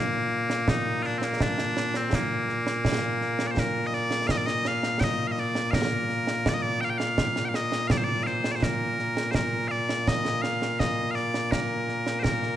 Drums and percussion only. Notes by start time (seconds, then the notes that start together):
0.50 snare
0.68 concert bass drum, snare
1.04 snare
1.22 snare
1.40 concert bass drum, snare
1.58 snare
1.77 snare
1.94 snare
2.13 concert bass drum, snare
2.49 snare
2.67 snare
2.85 concert bass drum, snare
3.21 snare
3.39 snare
3.57 concert bass drum, snare
3.93 snare
4.11 snare
4.29 concert bass drum, snare
4.47 snare
4.65 snare
4.83 snare
5.01 concert bass drum, snare
5.38 snare
5.55 snare
5.73 concert bass drum, snare
6.09 snare
6.27 snare
6.46 concert bass drum, snare
6.82 snare
7.00 snare
7.18 concert bass drum, snare
7.36 snare
7.54 snare
7.72 snare
7.90 concert bass drum, snare
8.26 snare
8.44 snare
8.63 concert bass drum, snare
8.99 snare
9.17 snare
9.35 concert bass drum, snare
9.89 snare
10.08 concert bass drum, snare
10.25 snare
10.44 snare
10.62 snare
10.80 concert bass drum, snare
11.16 snare
11.34 snare
11.52 concert bass drum, snare
11.89 snare
12.07 snare
12.24 concert bass drum, snare
12.43 snare